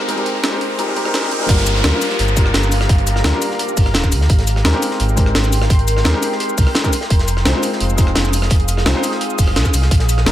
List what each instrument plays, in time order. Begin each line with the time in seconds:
Already playing: ambient pad G4 C5 A#5, riser
0.00 cross-stick
0.08 sub bass G#1, felt piano G#3 C4 D#4 G4 A#4, closed hi-hat
0.15 felt piano G#3 C4 D#4 G4, closed hi-hat
0.20 felt piano A#4
0.26 closed hi-hat
0.35 cross-stick
0.43 sub bass D#2, felt piano G#3 C4 D#4 G4 A#4, snare, closed hi-hat
0.50 felt piano G#3 C4 D#4 G4
0.55 felt piano A#4
0.61 closed hi-hat
0.78 felt piano G#3 C4 D#4 G4 A#4, closed hi-hat
0.86 felt piano G#3 C4 D#4 G4
0.90 felt piano A#4
0.95 felt piano G#3 C4 D#4 G4 A#4, closed hi-hat
1.03 felt piano G#3 C4 D#4 G4, cross-stick
1.08 felt piano A#4
1.13 sub bass D#1, felt piano G#3 C4 D#4 G4 A#4, snare, closed hi-hat
1.21 felt piano G#3 C4 D#4 G4, cross-stick
1.25 felt piano A#4
1.30 sub bass D#2, felt piano G#3 C4 D#4 G4 A#4, closed hi-hat
1.38 felt piano G#3 C4 D#4 G4
1.43 felt piano A#4
1.48 sub bass G1, felt piano G3 A#3 D4 F4 A#4, ambient pad G4 F5 A#5, kick, closed hi-hat, crash, downlifter
1.57 snare, closed hi-hat
1.67 closed hi-hat, shaker
1.75 cross-stick, snare
1.83 sub bass D2, felt piano G3 A#3 D4 F4 A#4, snare, closed hi-hat
1.91 felt piano G3 A#3 D4 F4
1.95 felt piano A#4
2.02 closed hi-hat, open hi-hat, shaker
2.10 snare
2.19 sub bass G1, closed hi-hat
2.28 shaker
2.35 felt piano G3 A#3 D4 F4, kick, closed hi-hat, shaker
2.39 felt piano A#4
2.46 cross-stick
2.54 sub bass G1, snare, closed hi-hat
2.63 shaker
2.72 closed hi-hat, open hi-hat, shaker
2.81 cross-stick, snare
2.89 sub bass G1, kick, closed hi-hat
2.98 closed hi-hat
3.07 closed hi-hat, shaker
3.16 cross-stick, snare
3.23 sub bass D2, felt piano G3 A#3 D4 F4 A#4, snare, closed hi-hat
3.31 felt piano G3 A#3 D4 F4
3.36 felt piano A#4
3.42 closed hi-hat, open hi-hat, shaker
3.51 snare
3.59 closed hi-hat
3.68 shaker
3.77 sub bass G1, kick, closed hi-hat, open hi-hat, shaker
3.86 cross-stick
3.94 sub bass D1, snare, closed hi-hat
4.04 kick, cross-stick, shaker
4.12 sub bass D2, closed hi-hat, open hi-hat, shaker
4.21 snare
4.29 sub bass G#1, ambient pad A#4 G5 C6, kick, closed hi-hat
4.39 snare, closed hi-hat
4.47 closed hi-hat, shaker
4.56 cross-stick, snare
4.64 sub bass D#2, felt piano G#3 C4 D#4 G4 A#4, snare, closed hi-hat
4.72 felt piano G#3 C4 D#4 G4
4.76 felt piano A#4
4.82 closed hi-hat, open hi-hat, shaker
4.91 snare
5.00 sub bass G#1, closed hi-hat
5.09 shaker
5.15 felt piano G#3 C4 D#4 G4, kick, closed hi-hat, shaker
5.20 felt piano A#4
5.26 cross-stick
5.35 sub bass G#1, snare, closed hi-hat
5.44 shaker
5.53 closed hi-hat, open hi-hat, shaker
5.61 cross-stick, snare
5.70 sub bass G#1, kick, closed hi-hat
5.79 closed hi-hat
5.88 closed hi-hat, shaker
5.97 cross-stick, snare
6.04 sub bass D#2, felt piano G#3 C4 D#4 G4 A#4, snare, closed hi-hat
6.12 felt piano G#3 C4 D#4 G4
6.16 felt piano A#4
6.23 closed hi-hat, open hi-hat, shaker
6.32 snare
6.40 closed hi-hat
6.49 shaker
6.58 sub bass C2, kick, closed hi-hat, open hi-hat, shaker
6.67 cross-stick
6.75 snare, closed hi-hat
6.83 felt piano G#3 C4 D#4 G4 A#4, kick, cross-stick, closed hi-hat, shaker
6.93 closed hi-hat, open hi-hat, shaker
7.01 snare
7.10 sub bass F1, ambient pad G#4 F5 D#6, kick, closed hi-hat
7.19 snare, closed hi-hat
7.27 closed hi-hat, shaker
7.37 cross-stick, snare
7.44 sub bass C2, felt piano G#3 C4 D#4 F4 C5, snare, closed hi-hat
7.52 felt piano G#3 C4 D#4 F4
7.57 felt piano C5
7.63 closed hi-hat, open hi-hat, shaker
7.72 snare
7.80 sub bass F1, closed hi-hat
7.90 shaker
7.96 felt piano G#3 C4 D#4 F4, kick, closed hi-hat, shaker
8.00 felt piano C5
8.07 cross-stick
8.15 sub bass F1, snare, closed hi-hat
8.25 shaker
8.33 closed hi-hat, open hi-hat, shaker
8.42 cross-stick, snare
8.50 sub bass F1, kick, closed hi-hat
8.60 closed hi-hat
8.68 closed hi-hat, shaker
8.77 cross-stick, snare
8.85 sub bass C2, felt piano G#3 C4 D#4 F4 C5, snare, closed hi-hat
8.93 felt piano G#3 C4 D#4 F4
8.97 felt piano C5
9.03 closed hi-hat, open hi-hat, shaker
9.11 snare
9.21 closed hi-hat
9.30 shaker
9.39 sub bass F1, kick, closed hi-hat, open hi-hat, shaker
9.47 cross-stick
9.56 sub bass C2, snare, closed hi-hat
9.65 kick, cross-stick, shaker
9.74 sub bass C2, closed hi-hat, open hi-hat, shaker
9.82 snare
9.91 sub bass A#1, ambient pad D5 A#5, kick, closed hi-hat
10.00 snare, closed hi-hat
10.09 closed hi-hat, shaker
10.17 cross-stick, snare
10.25 sub bass F1, felt piano G#3 A#3 D4 F4 A#4, snare, closed hi-hat